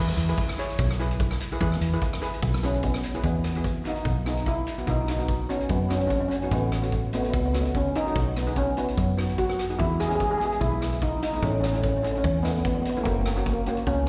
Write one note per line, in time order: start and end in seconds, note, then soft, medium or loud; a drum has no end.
0.00 0.12 E2 medium
0.00 0.15 E4 medium
0.00 0.15 G#4 medium
0.00 0.15 B4 medium
0.08 cross-stick medium
0.17 0.32 E2 medium
0.17 closed hi-hat medium
0.28 0.47 E4 medium
0.28 0.47 G#4 medium
0.28 0.47 B4 medium
0.28 closed hi-hat medium
0.38 kick medium
0.38 closed hi-hat medium
0.49 cross-stick medium
0.58 0.83 E4 medium
0.58 0.83 G#4 medium
0.58 0.83 C#5 medium
0.58 closed hi-hat medium
0.70 closed hi-hat medium
0.79 1.40 B1 medium
0.79 kick loud
0.79 closed hi-hat medium
0.90 cross-stick medium
1.00 1.30 E4 medium
1.00 1.31 G#4 medium
1.00 1.31 B4 medium
1.00 closed hi-hat medium
1.11 closed hi-hat medium
1.20 kick medium
1.20 closed hi-hat medium
1.31 cross-stick medium
1.40 closed hi-hat medium
1.52 1.57 E4 medium
1.52 1.57 G#4 medium
1.52 1.57 B4 medium
1.52 closed hi-hat medium
1.61 1.76 E2 medium
1.61 1.79 E4 medium
1.61 1.79 G#4 medium
1.61 1.80 B4 medium
1.61 kick medium
1.61 closed hi-hat medium
1.72 cross-stick medium
1.81 1.96 E2 medium
1.81 closed hi-hat medium
1.93 2.11 E4 medium
1.93 2.11 G#4 medium
1.93 2.11 B4 medium
1.93 closed hi-hat medium
2.02 kick medium
2.02 closed hi-hat medium
2.13 cross-stick medium
2.22 2.46 E4 medium
2.22 2.46 G#4 medium
2.22 2.47 B4 medium
2.22 closed hi-hat medium
2.34 closed hi-hat medium
2.42 3.04 B1 medium
2.42 kick loud
2.42 closed hi-hat medium
2.54 cross-stick medium
2.63 2.73 C#4 medium
2.63 2.94 E4 medium
2.63 2.94 G#4 medium
2.63 2.94 B4 medium
2.63 closed hi-hat medium
2.74 closed hi-hat soft
2.83 3.24 B3 medium
2.83 kick medium
2.83 closed hi-hat medium
2.94 cross-stick medium
3.03 closed hi-hat medium
3.14 3.20 E4 medium
3.14 3.20 G#4 medium
3.14 3.21 B4 medium
3.14 closed hi-hat medium
3.23 3.85 E2 medium
3.23 3.42 B3 medium
3.23 3.87 B3 medium
3.23 3.43 E4 soft
3.23 3.43 G#4 medium
3.23 kick medium
3.23 closed hi-hat soft
3.44 cross-stick medium
3.44 closed hi-hat medium
3.55 3.74 B3 medium
3.55 3.74 E4 medium
3.55 3.74 G#4 medium
3.55 closed hi-hat medium
3.64 kick medium
3.64 closed hi-hat medium
3.84 4.09 B3 medium
3.84 4.25 D#4 medium
3.84 4.10 E4 medium
3.84 4.10 F#4 medium
3.84 closed hi-hat medium
3.96 closed hi-hat medium
4.05 4.67 B1 medium
4.05 kick medium
4.05 closed hi-hat medium
4.26 4.57 B3 medium
4.26 4.48 D#4 medium
4.26 4.58 E4 medium
4.26 4.58 G#4 medium
4.26 cross-stick medium
4.26 closed hi-hat medium
4.37 closed hi-hat soft
4.46 4.85 E4 medium
4.46 kick medium
4.46 closed hi-hat medium
4.67 closed hi-hat medium
4.78 4.84 B3 medium
4.78 4.84 E4 medium
4.78 4.84 F#4 medium
4.78 closed hi-hat soft
4.86 5.49 B1 medium
4.86 5.06 B3 medium
4.86 5.06 D#4 medium
4.86 5.08 D#4 medium
4.86 5.06 F#4 medium
4.86 kick medium
4.86 closed hi-hat medium
5.08 5.47 D#4 medium
5.08 cross-stick medium
5.08 closed hi-hat medium
5.18 5.37 B3 medium
5.18 5.37 D#4 medium
5.18 5.37 F#4 medium
5.18 closed hi-hat medium
5.28 kick medium
5.28 closed hi-hat soft
5.49 5.74 B3 medium
5.49 5.70 C#4 medium
5.49 5.74 D#4 medium
5.49 5.74 F#4 medium
5.49 closed hi-hat medium
5.61 closed hi-hat medium
5.69 6.31 F#2 medium
5.69 5.91 B3 medium
5.69 kick medium
5.69 closed hi-hat soft
5.89 6.21 B3 medium
5.89 5.99 C#4 medium
5.89 6.21 D#4 medium
5.89 6.22 F#4 medium
5.89 cross-stick medium
5.89 closed hi-hat medium
6.00 6.06 C#4 soft
6.00 closed hi-hat soft
6.08 6.12 C#4 medium
6.08 kick medium
6.08 closed hi-hat soft
6.14 6.19 C#4 medium
6.21 6.27 C#4 medium
6.29 6.34 C#4 medium
6.29 closed hi-hat medium
6.35 6.43 C#4 medium
6.42 6.48 B3 medium
6.42 6.48 D#4 medium
6.42 6.48 F#4 medium
6.42 closed hi-hat soft
6.51 7.13 A1 medium
6.51 6.71 A3 medium
6.51 7.14 B3 medium
6.51 6.71 C#4 medium
6.51 6.71 F#4 medium
6.51 kick medium
6.51 closed hi-hat medium
6.72 cross-stick medium
6.72 closed hi-hat medium
6.82 7.01 A3 medium
6.82 7.01 C#4 medium
6.82 7.01 F#4 medium
6.82 closed hi-hat medium
6.92 kick medium
6.92 closed hi-hat medium
7.13 7.38 A3 medium
7.13 7.21 B3 medium
7.13 7.39 C#4 medium
7.13 7.39 F#4 medium
7.13 closed hi-hat medium
7.22 7.29 B3 medium
7.22 closed hi-hat soft
7.30 7.95 C#2 medium
7.30 7.36 B3 medium
7.30 kick medium
7.30 closed hi-hat medium
7.37 7.44 B3 medium
7.45 7.52 B3 medium
7.53 7.85 A3 medium
7.53 7.60 B3 soft
7.53 7.86 C#4 medium
7.53 7.86 F#4 medium
7.53 cross-stick medium
7.53 closed hi-hat medium
7.61 7.68 B3 medium
7.65 closed hi-hat medium
7.75 7.85 C#4 medium
7.75 kick medium
7.75 closed hi-hat soft
7.95 8.38 D#4 medium
7.95 closed hi-hat medium
8.06 8.12 A3 medium
8.06 8.12 C#4 medium
8.06 8.12 F#4 medium
8.06 closed hi-hat medium
8.14 8.77 B1 medium
8.14 8.33 B3 medium
8.14 8.34 D#4 medium
8.14 8.34 F#4 medium
8.14 kick loud
8.14 closed hi-hat medium
8.36 8.57 B3 medium
8.36 cross-stick medium
8.36 closed hi-hat medium
8.47 8.65 B3 medium
8.47 8.65 D#4 medium
8.47 8.65 G#4 medium
8.47 closed hi-hat medium
8.56 8.78 C#4 medium
8.56 kick medium
8.56 closed hi-hat medium
8.77 9.02 B3 medium
8.77 9.16 B3 medium
8.77 9.02 D#4 medium
8.77 9.02 F#4 medium
8.77 closed hi-hat medium
8.88 closed hi-hat soft
8.97 9.59 F#2 medium
8.97 kick medium
8.97 closed hi-hat medium
9.17 9.49 B3 medium
9.17 9.49 D#4 medium
9.17 9.49 F#4 medium
9.17 cross-stick medium
9.17 closed hi-hat medium
9.29 closed hi-hat soft
9.38 9.80 F#4 medium
9.38 kick medium
9.38 closed hi-hat soft
9.49 cross-stick medium
9.59 cross-stick medium
9.59 closed hi-hat medium
9.69 9.75 B3 medium
9.69 9.75 D#4 medium
9.69 9.76 G#4 medium
9.69 closed hi-hat soft
9.78 10.41 E2 medium
9.78 9.97 G#3 medium
9.78 9.98 B3 medium
9.78 10.00 E4 medium
9.78 9.98 E4 medium
9.78 kick medium
9.78 closed hi-hat soft
10.00 10.07 G#4 medium
10.00 cross-stick medium
10.00 closed hi-hat medium
10.08 10.28 G#3 medium
10.08 10.29 B3 medium
10.08 10.29 C#4 medium
10.08 10.14 G#4 medium
10.08 closed hi-hat medium
10.15 10.21 G#4 medium
10.20 10.30 G#4 medium
10.20 kick medium
10.20 closed hi-hat medium
10.31 10.37 G#4 medium
10.38 10.65 G#3 medium
10.38 10.65 B3 medium
10.38 10.65 E4 medium
10.38 10.44 G#4 medium
10.38 closed hi-hat medium
10.45 10.52 G#4 medium
10.52 closed hi-hat medium
10.61 11.22 B1 medium
10.61 10.99 E4 medium
10.61 kick loud
10.61 closed hi-hat medium
10.80 11.12 G#3 medium
10.80 11.13 B3 medium
10.80 11.13 E4 medium
10.80 cross-stick medium
10.80 closed hi-hat medium
10.92 closed hi-hat medium
11.02 11.22 D#4 medium
11.02 kick medium
11.02 closed hi-hat medium
11.22 11.42 D#4 medium
11.22 closed hi-hat medium
11.32 11.38 G#3 medium
11.32 11.39 B3 medium
11.32 11.39 E4 medium
11.32 closed hi-hat medium
11.42 12.04 A1 medium
11.42 11.61 A3 medium
11.42 11.61 C#4 medium
11.42 11.51 C#4 medium
11.42 11.62 E4 medium
11.42 kick loud
11.42 closed hi-hat medium
11.52 11.59 C#4 medium
11.60 11.64 C#4 medium
11.60 cross-stick medium
11.60 closed hi-hat medium
11.66 11.73 C#4 soft
11.73 11.92 A3 medium
11.73 11.92 C#4 medium
11.73 11.80 C#4 soft
11.73 11.92 E4 medium
11.73 closed hi-hat medium
11.81 11.87 C#4 soft
11.81 kick medium
11.81 closed hi-hat medium
11.89 11.96 C#4 medium
11.97 12.02 C#4 medium
12.03 12.28 A3 medium
12.03 12.11 C#4 medium
12.03 12.28 C#4 medium
12.03 12.29 E4 medium
12.03 closed hi-hat medium
12.12 12.16 C#4 medium
12.12 closed hi-hat soft
12.18 12.23 C#4 medium
12.24 12.86 E2 medium
12.24 12.33 C#4 medium
12.24 kick loud
12.24 closed hi-hat medium
12.43 12.76 A3 medium
12.43 12.51 B3 medium
12.43 12.76 C#4 medium
12.43 12.76 E4 medium
12.43 cross-stick medium
12.43 closed hi-hat medium
12.52 12.57 B3 medium
12.56 12.66 B3 medium
12.56 closed hi-hat soft
12.65 12.73 B3 medium
12.65 kick medium
12.65 closed hi-hat medium
12.75 12.81 B3 medium
12.82 12.88 B3 medium
12.82 closed hi-hat medium
12.89 12.98 B3 medium
12.96 13.02 A3 medium
12.96 13.02 C#4 medium
12.96 13.03 E4 medium
12.96 closed hi-hat soft
13.04 13.67 F#1 medium
13.04 13.11 A#3 medium
13.04 13.25 A#3 medium
13.04 13.25 C#4 medium
13.04 13.25 F#4 medium
13.04 kick medium
13.04 closed hi-hat medium
13.13 13.20 A#3 medium
13.21 13.27 A#3 medium
13.26 13.35 A#3 medium
13.26 cross-stick medium
13.26 closed hi-hat medium
13.36 13.41 A#3 medium
13.36 13.55 A#3 medium
13.36 13.55 C#4 medium
13.36 13.56 F#4 medium
13.36 closed hi-hat medium
13.43 13.49 A#3 soft
13.43 kick medium
13.43 closed hi-hat medium
13.50 13.59 A#3 medium
13.66 13.92 A#3 medium
13.66 13.76 A#3 medium
13.66 13.92 C#4 medium
13.66 13.92 F#4 medium
13.66 closed hi-hat medium
13.77 closed hi-hat soft
13.86 14.09 C#2 medium
13.86 14.06 C#4 medium
13.86 kick loud
13.86 closed hi-hat medium